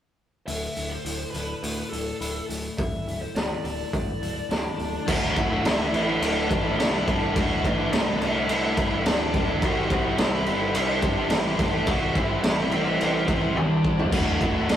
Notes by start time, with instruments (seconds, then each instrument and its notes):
0.47 picked electric bass D1, clean electric guitar D2, lead electric guitar E5, open hi-hat
0.76 picked electric bass D1, open hi-hat
0.89 lead electric guitar C5
1.05 picked electric bass D1, clean electric guitar A2, open hi-hat
1.31 picked electric bass D1, lead electric guitar B4, open hi-hat
1.35 clean electric guitar D3
1.63 picked electric bass D2, clean electric guitar A2, open hi-hat
1.89 picked electric bass D1, clean electric guitar D3, lead electric guitar A4, open hi-hat
2.21 picked electric bass D1, clean electric guitar E4, open hi-hat
2.49 picked electric bass D1, clean electric guitar A3, open hi-hat
2.78 picked electric bass D1, clean electric guitar D2, lead electric guitar E5, kick, open hi-hat
3.06 picked electric bass D1, open hi-hat
3.21 lead electric guitar C5
3.34 picked electric bass D1, clean electric guitar A2, lead electric guitar D5, snare, open hi-hat
3.64 picked electric bass D1, clean electric guitar D3, lead electric guitar D5, open hi-hat
3.93 picked electric bass D2, clean electric guitar A2, kick, open hi-hat
4.21 picked electric bass D1, clean electric guitar D3, open hi-hat
4.49 picked electric bass D1, lead electric guitar D4 D5, clean electric guitar E4, snare, open hi-hat
4.78 picked electric bass D1, clean electric guitar A3, open hi-hat
5.05 picked electric bass D1, overdriven electric guitar D2 A2 D3 A3 E4, string machine E4 D5 F#5 A5, kick, crash
5.09 lead electric guitar F#4 F#5
5.35 picked electric bass D1, overdriven electric guitar A2 D3 A3 E4, lead electric guitar F#4 F#5, kick, crash
5.49 overdriven electric guitar D3 A3 E4
5.63 picked electric bass D1, overdriven electric guitar D2 A2 D3 A3 E4, lead electric guitar E4 E5, snare, crash
5.76 overdriven electric guitar D3 A3 E4
5.90 picked electric bass A1, overdriven electric guitar A2 D3 A3 E4
5.94 crash
6.05 overdriven electric guitar D3 A3 E4
6.20 picked electric bass D1, lead electric guitar D4, crash
6.25 lead electric guitar D5
6.36 overdriven electric guitar D3 A3 E4
6.48 picked electric bass A1, overdriven electric guitar A2 D3 A3 E4, kick, crash
6.63 overdriven electric guitar D3 A3 E4
6.77 picked electric bass C2, overdriven electric guitar D2 A2 D3 A3 E4, snare, crash
6.81 lead electric guitar E4 E5
6.92 overdriven electric guitar D3 A3 E4
7.05 overdriven electric guitar A2 D3 A3 E4, kick, crash
7.11 lead electric guitar D4 D5
7.20 overdriven electric guitar D3 A3 E4
7.33 picked electric bass D1, overdriven electric guitar D2 A2 D3 A3 E4, string machine B5, kick, crash
7.39 lead electric guitar F#4 F#5
7.62 picked electric bass A1, overdriven electric guitar A2 D3 A3 E4, lead electric guitar E4, kick, crash
7.66 lead electric guitar E5
7.76 overdriven electric guitar D3 A3 E4
7.90 picked electric bass C2, overdriven electric guitar D2 A2 D3 A3 E4, snare, crash
8.04 overdriven electric guitar D3 A3 E4
8.11 lead electric guitar D5
8.18 picked electric bass C2, overdriven electric guitar A2 D3 A3 E4, crash
8.24 lead electric guitar E4 E5
8.32 overdriven electric guitar D3 A3 E4
8.48 picked electric bass C2, crash
8.64 overdriven electric guitar D3 A3 E4
8.75 overdriven electric guitar A2 D3 A3 E4, kick, crash
8.89 overdriven electric guitar D3 A3 E4
9.03 picked electric bass D1, overdriven electric guitar D2 A2 D3 A3 E4, lead electric guitar D4 D5, snare, crash
9.20 overdriven electric guitar D3 A3 E4
9.32 overdriven electric guitar A2 D3 A3 E4, kick, crash
9.47 overdriven electric guitar D3 A3 E4
9.60 picked electric bass C2, overdriven electric guitar C3 G3 C4 E4 G4 C5, lead electric guitar F#4, string machine C5 G5, kick, crash
9.64 lead electric guitar F#5
9.88 picked electric bass C2, overdriven electric guitar C4 E4 G4 C5, lead electric guitar F#4, kick, crash
9.93 lead electric guitar F#5
10.03 overdriven electric guitar C4 E4 G4 C5
10.16 picked electric bass C2, overdriven electric guitar C3 G3 C4 E4 G4 C5, lead electric guitar E4, snare, crash
10.21 lead electric guitar E5
10.31 overdriven electric guitar C4 E4 G4 C5
10.45 picked electric bass G1, overdriven electric guitar C4 E4 G4 C5, crash
10.59 overdriven electric guitar C4 E4 G4 C5
10.74 picked electric bass C2, lead electric guitar D4 D5, crash
10.89 overdriven electric guitar C4 E4 G4 C5
11.01 picked electric bass G1, overdriven electric guitar C4 E4 G4 C5, kick, crash
11.16 overdriven electric guitar C4 E4 G4 C5
11.29 picked electric bass A1, overdriven electric guitar C3 G3 C4 E4 G4 C5, lead electric guitar E4 E5, snare, crash
11.44 overdriven electric guitar C4 E4 G4 C5
11.57 overdriven electric guitar C4 E4 G4 C5, lead electric guitar D4 D5, kick, crash
11.71 overdriven electric guitar C4 E4 G4 C5
11.86 picked electric bass C2, overdriven electric guitar C3 G3 C4 E4 G4 C5, lead electric guitar F#4 F#5, string machine F#5, kick, crash
12.14 picked electric bass G1, overdriven electric guitar C4 E4 G4 C5, lead electric guitar E4 E5, kick, crash
12.29 overdriven electric guitar C4 E4 G4 C5
12.43 picked electric bass A1, overdriven electric guitar C3 G3 C4 E4 G4 C5, snare, crash
12.57 overdriven electric guitar C4 E4 G4 C5
12.71 picked electric bass A1, overdriven electric guitar C4 E4 G4 C5, lead electric guitar C4 C5, crash
12.84 overdriven electric guitar C4 E4 G4 C5
13.00 picked electric bass A1, crash
13.14 overdriven electric guitar C4 E4 G4 C5
13.27 overdriven electric guitar C4 E4 G4 C5, kick, crash
13.41 overdriven electric guitar C4 E4 G4 C5
13.55 picked electric bass C2, overdriven electric guitar C3 G3 C4 E4 G4 C5, lead electric guitar D4 D5, high tom
13.70 overdriven electric guitar C4 E4 G4 C5
13.83 overdriven electric guitar C4 E4 G4 C5, kick
13.97 overdriven electric guitar C4 E4 G4 C5, floor tom
14.10 picked electric bass D1, overdriven electric guitar D2 A2 D3 A3 E4, lead electric guitar F#4 F#5, string machine D5 F#5 A5, kick, crash
14.38 picked electric bass D1, overdriven electric guitar A2 D3 A3 E4, kick, crash
14.43 lead electric guitar F#4 F#5
14.52 overdriven electric guitar D3 A3 E4
14.67 picked electric bass D1, overdriven electric guitar D2 A2 D3 A3 E4, lead electric guitar E4, snare, crash
14.71 lead electric guitar E5